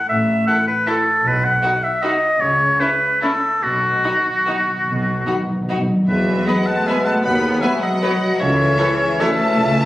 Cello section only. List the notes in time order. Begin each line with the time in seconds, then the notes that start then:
0.10 A2
1.25 B2
2.41 C#3
3.63 B2
4.88 B2
6.10 E3
6.48 F#3
6.68 A3
6.88 G#3
7.07 A3
7.26 B3
7.63 G#3
7.83 F#3
8.40 E3
9.20 A3